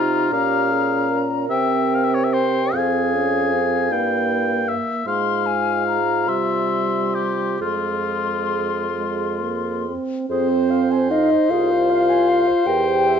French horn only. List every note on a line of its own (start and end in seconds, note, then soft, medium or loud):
0.00 0.35 D#4 soft
0.33 1.49 C#4 soft
1.50 2.72 C4 soft
2.74 3.15 C4 soft
3.14 3.55 C#4 soft
3.53 3.90 C4 soft
3.91 5.05 A#3 soft
5.07 5.98 G#3 soft
6.28 7.57 G3 soft
7.61 8.86 G#3 soft
8.97 9.44 G#3 soft
9.42 9.89 A#3 soft
9.88 10.29 C4 soft
10.30 11.07 C4 medium
11.11 11.51 D#4 medium
11.50 12.66 F4 medium
12.66 13.20 G4 medium